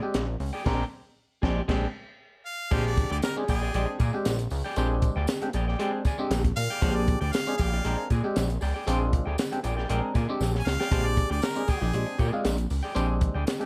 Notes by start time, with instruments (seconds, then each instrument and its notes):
0.02 clav G#3 C4 D4 G4, muted clean electric guitar stroke
0.14 analog synth bass A#1, muted clean electric guitar stroke, snare, closed hi-hat
0.28 muted clean electric guitar stroke
0.40 analog synth bass C#2, clav D4 G4, open hi-hat
0.53 clav D4 G4, clean electric guitar G#4 D5 G5
0.64 analog synth bass A#1, clav G#3 C4 D4 A#4, clean electric guitar G#4 D5 G5, kick, snare, crash
1.42 analog synth bass A#1, clav G#3 C4 D4 G4, clean electric guitar G#4 D5 G5, kick, snare
1.68 analog synth bass A#1, clav G#3 C4 D4 G4, clean electric guitar G#4 D5 G5, kick, snare, crash
2.46 harmonica F5
2.71 analog synth bass A#1, clav G#3 C4 D4 G4, clean electric guitar G#4 D5 G5, kick, crash, tambourine
2.84 harmonica D5, muted clean electric guitar stroke
2.96 muted clean electric guitar stroke, kick, closed hi-hat
3.10 analog synth bass D2, clean electric guitar G#4 D5 G5, harmonica D5
3.22 harmonica A#4, muted clean electric guitar stroke, snare, closed hi-hat, tambourine
3.36 clav G#3 C4 D4 G4, trombone G#4, muted clean electric guitar stroke
3.48 analog synth bass A#1, clav D4 G4, clean electric guitar G#4 D5 G5, harmonica G#4, kick, closed hi-hat, tambourine
3.61 clean electric guitar G#4 D5 G5, snare
3.73 analog synth bass A#1, clav G#3 C4 D4 G4, clean electric guitar G#4 D5 G5, closed hi-hat
3.87 muted clean electric guitar stroke
3.99 analog synth bass A#2, clean electric guitar G#4 D5 G#5, kick, closed hi-hat, tambourine
4.13 clav G#3 C4 D4 G4, muted clean electric guitar stroke
4.25 analog synth bass A#1, muted clean electric guitar stroke, snare, closed hi-hat, tambourine
4.39 muted clean electric guitar stroke, closed hi-hat
4.50 analog synth bass C#2, clav D4 G4, open hi-hat, tambourine
4.64 clav D4 G#4, clean electric guitar G#4 D5 G5
4.76 analog synth bass A#1, clav G#3 C4 D4 G4, clean electric guitar G#4 D5 G5, closed hi-hat, tambourine
4.91 muted clean electric guitar stroke
5.02 muted clean electric guitar stroke, kick, closed hi-hat, tambourine
5.16 analog synth bass D2, clean electric guitar G#4 D5 G5
5.27 muted clean electric guitar stroke, snare, closed hi-hat, tambourine
5.42 clav G#3 C4 D4 G4, muted clean electric guitar stroke, closed hi-hat
5.53 analog synth bass A#1, clav D4 G4, clean electric guitar G#4 D5 G5, closed hi-hat, tambourine
5.68 clean electric guitar G#4 D5 G5, snare
5.79 clav G#3 C4 D4 G4, clean electric guitar G#4 D5 G5, closed hi-hat
5.94 muted clean electric guitar stroke
6.05 clean electric guitar G#4 D5 G#5, kick, snare, closed hi-hat, tambourine
6.18 clav G#3 C4 D4 G4
6.31 analog synth bass A#1, muted clean electric guitar stroke, snare, closed hi-hat, tambourine
6.44 muted clean electric guitar stroke, kick, closed hi-hat
6.56 analog synth bass A#2, clav D4 G4, harmonica F5, open hi-hat, tambourine
6.69 clav D4 G4, clean electric guitar G#4 D5 G5
6.81 analog synth bass A#1, clav G#3 C4 D4 G4, clean electric guitar G#4 D5 G5, kick, closed hi-hat, tambourine
6.95 harmonica D5, muted clean electric guitar stroke
7.07 muted clean electric guitar stroke, kick, closed hi-hat
7.21 analog synth bass D2, clean electric guitar G#4 D5 G5, harmonica D5
7.32 harmonica F5, muted clean electric guitar stroke, snare, closed hi-hat, tambourine
7.47 clav G#3 C4 D4 G4, trombone G#4, muted clean electric guitar stroke
7.58 analog synth bass A#1, clean electric guitar G#4 D5 G5, harmonica F5, kick, closed hi-hat, tambourine
7.73 clean electric guitar G#4 D5 G5, snare
7.85 analog synth bass A#1, clav G#3 C4 D4 A#4, clean electric guitar G#4 D5 G5, closed hi-hat
7.99 muted clean electric guitar stroke
8.10 analog synth bass A#2, clean electric guitar G#4 D5 G#5, kick, snare, closed hi-hat, tambourine
8.24 clav G#3 C4 D4 G4, muted clean electric guitar stroke
8.36 analog synth bass A#1, muted clean electric guitar stroke, snare, closed hi-hat, tambourine
8.50 muted clean electric guitar stroke, closed hi-hat
8.61 analog synth bass C#2, clav D4 A#4, clean electric guitar G#4 D5 G5, open hi-hat, tambourine
8.74 clav D4 G#4, clean electric guitar G#4 D5 G5
8.86 analog synth bass A#1, clav G#3 C4 D4 F4, clean electric guitar G#4 D5 G5, closed hi-hat, tambourine
9.01 muted clean electric guitar stroke
9.13 muted clean electric guitar stroke, kick, closed hi-hat
9.26 analog synth bass D2, clean electric guitar G#4 D5 G5
9.38 muted clean electric guitar stroke, snare, closed hi-hat, tambourine
9.51 clav G#3 C4 D4 G4, muted clean electric guitar stroke, closed hi-hat
9.63 analog synth bass A#1, clav D4 G4, clean electric guitar G#4 D5 G5, closed hi-hat, tambourine
9.77 clean electric guitar G#4 D5 G5, snare
9.89 analog synth bass A#1, clav G#3 C4 D4 A#4, clean electric guitar G#4 D5 G5, closed hi-hat
10.02 muted clean electric guitar stroke
10.14 analog synth bass A#2, clean electric guitar G#4 D5 G#5, kick, snare, closed hi-hat, tambourine
10.28 clav G#3 C4 D4 G4, muted clean electric guitar stroke
10.40 analog synth bass A#1, muted clean electric guitar stroke, snare, tambourine
10.54 muted clean electric guitar stroke, snare
10.59 harmonica G#5
10.66 analog synth bass C#2, clav D4 G4, harmonica F5, snare, tambourine
10.79 clav D4 G4, clean electric guitar G#4 D5 G5, snare
10.91 analog synth bass A#1, clav G#3 C4 D4 G4, clean electric guitar G#4 D5 G5, kick, closed hi-hat, tambourine
11.05 harmonica D5, muted clean electric guitar stroke
11.16 muted clean electric guitar stroke, kick, closed hi-hat, tambourine
11.29 analog synth bass D2, clean electric guitar G#4 D5 G5, harmonica D5
11.42 harmonica A#4, muted clean electric guitar stroke, snare, closed hi-hat, tambourine
11.55 clav G#3 C4 D4 G4, trombone G#4, muted clean electric guitar stroke, closed hi-hat
11.68 analog synth bass A#1, clav D4 G4, clean electric guitar G#4 D5 G5, harmonica G#4, kick, closed hi-hat, tambourine
11.81 analog synth bass A#1, clean electric guitar G#4 D5 G5, snare
11.93 analog synth bass A#1, clav G#3 C4 D4 G4, muted clean electric guitar stroke, closed hi-hat
12.06 muted clean electric guitar stroke
12.18 analog synth bass A#2, clean electric guitar G#4 D5 G#5, kick, closed hi-hat, tambourine
12.32 clav G#3 C4 D4 F4, muted clean electric guitar stroke
12.44 analog synth bass A#1, muted clean electric guitar stroke, snare, closed hi-hat, tambourine
12.57 muted clean electric guitar stroke, closed hi-hat
12.70 analog synth bass C#2, clav D4 G4, open hi-hat, tambourine
12.83 clav D4 F4, clean electric guitar G#4 D5 G5
12.95 analog synth bass A#1, clav G#3 C4 D4 G4, clean electric guitar G#4 D5 G5, closed hi-hat, tambourine
13.09 muted clean electric guitar stroke
13.21 muted clean electric guitar stroke, kick, closed hi-hat
13.35 analog synth bass D2, clean electric guitar G#4 D5 G5
13.46 muted clean electric guitar stroke, snare, closed hi-hat, tambourine
13.60 clav G#3 C4 D4 G4, muted clean electric guitar stroke, closed hi-hat